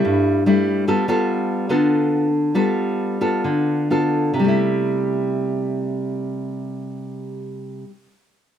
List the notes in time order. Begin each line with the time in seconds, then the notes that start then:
Already playing: G3 A3 E4
0.05 G2
0.46 G3 A3 E4
0.88 G3 B3 F4 A4
1.08 B3 F4 A4
1.69 D3 B3 F4 A4
2.55 G3 B3 F4 A4
3.21 B3 F4 A4
3.44 D3
3.90 B3 F4 A4
4.34 C3
4.39 G3
4.44 A3
4.48 E4